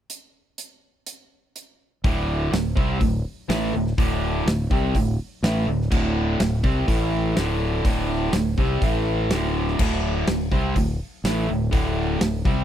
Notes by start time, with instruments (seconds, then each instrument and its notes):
0.10 closed hi-hat
0.58 closed hi-hat
1.06 closed hi-hat
1.56 closed hi-hat
2.04 fingered electric bass D1, overdriven electric guitar D2 A2 D3, kick, open hi-hat
2.52 fingered electric bass D1, overdriven electric guitar D2 A2, snare, open hi-hat
2.76 fingered electric bass C2, overdriven electric guitar C3 G3 C4, kick
3.00 fingered electric bass D1, overdriven electric guitar D2 A2, kick, open hi-hat
3.49 fingered electric bass A1, overdriven electric guitar A2 E3 A3, snare, open hi-hat
3.74 fingered electric bass D1, overdriven electric guitar D2 A2
3.86 snare
3.98 fingered electric bass D1, overdriven electric guitar D2 A2 D3, kick, open hi-hat
4.46 fingered electric bass D1, overdriven electric guitar D2 A2, snare, open hi-hat
4.71 fingered electric bass C2, overdriven electric guitar C3 G3 C4, kick
4.95 fingered electric bass D1, overdriven electric guitar D2 A2, kick, open hi-hat
5.43 fingered electric bass A1, overdriven electric guitar A2 E3 A3, snare, open hi-hat
5.67 fingered electric bass D1, overdriven electric guitar D2 A2
5.81 snare
5.91 fingered electric bass D1, overdriven electric guitar D2 A2 D3, kick, crash
6.40 fingered electric bass D1, overdriven electric guitar D2 A2, snare, open hi-hat
6.63 fingered electric bass C2, overdriven electric guitar C3 G3 C4, kick
6.88 fingered electric bass A1, overdriven electric guitar A2 E3 A3, kick, open hi-hat
7.36 fingered electric bass D1, overdriven electric guitar D2 A2 D3, snare, open hi-hat
7.85 fingered electric bass D1, overdriven electric guitar D2 A2 D3, kick, open hi-hat
8.33 fingered electric bass D1, overdriven electric guitar D2 A2, snare, open hi-hat
8.58 fingered electric bass C2, overdriven electric guitar C3 G3 C4, kick
8.82 fingered electric bass A1, overdriven electric guitar A2 E3 A3, kick, open hi-hat
9.29 fingered electric bass D1, overdriven electric guitar D2 A2 D3, snare, open hi-hat
9.68 snare
9.79 fingered electric bass D1, overdriven electric guitar D2 A2 D3, kick, crash
10.27 fingered electric bass D1, overdriven electric guitar D2 A2, snare, open hi-hat
10.51 fingered electric bass C2, overdriven electric guitar C3 G3 C4, kick
10.76 fingered electric bass D1, overdriven electric guitar D2 A2, kick, open hi-hat
11.24 fingered electric bass A1, overdriven electric guitar A2 E3 A3, snare, open hi-hat
11.48 fingered electric bass D1, overdriven electric guitar D2 A2
11.71 fingered electric bass D1, overdriven electric guitar D2 A2 D3, kick, open hi-hat
12.20 fingered electric bass D1, overdriven electric guitar D2 A2, snare, open hi-hat
12.45 fingered electric bass C2, overdriven electric guitar C3 G3 C4, kick